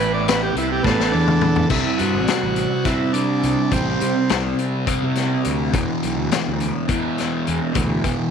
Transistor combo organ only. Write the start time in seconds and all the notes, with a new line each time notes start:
0.00 B4
0.14 D5
0.28 B4
0.43 G4
0.58 E4
0.72 G4
0.83 B3 A4
1.12 D4
1.71 E4
1.99 F#4
2.86 E4
3.13 D4
3.72 C4